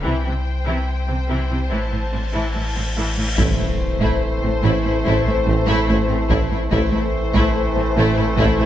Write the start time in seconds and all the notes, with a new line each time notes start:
0.02 C2 C3 E3 E4 C5 G5, cymbal swell
0.24 C3 E3 E4
0.66 C3 E3 E4
1.08 C3 E3 C4
1.28 C3 E3 E4
1.50 C3 E3 E4
1.70 A1 A2 E3 E4 A5
1.91 A2 E3 E4
2.12 A2 E3 C4
2.34 A2 E3 E4
2.54 A2 E3 E4
2.76 A2 E3 C4
2.97 A2 E3 E4
3.18 A2 E3 E4
3.37 A1 A2 E3 A3 C4 E4 C5, taiko, impact
3.58 A2 E4
3.62 A3
4.00 A2 A3 E4, taiko
4.42 A2 A3 C4
4.63 A1 A2 A3 E4
4.84 A2 A3 E4
5.04 A1 A2 A3 E4, taiko
5.26 A2 A3 E4
5.47 A1 A2 A3 C4
5.67 A2 A3 E4
5.88 A1 A2 A3 E4
6.08 A2 A3 C4
6.30 A1 A2 A3 E4, taiko
6.50 A2 A3 E4
6.70 A1 A2 E3 A3 C4 E4 C5, taiko
6.75 A3
6.93 A2 A3 E4
7.34 A2 A3 E4, taiko
7.76 A2 A3 C4
7.96 A1 A2 A3 E4
8.17 A2 A3 E4
8.37 A1 A2 A3 E4, taiko
8.59 A2 A3 E4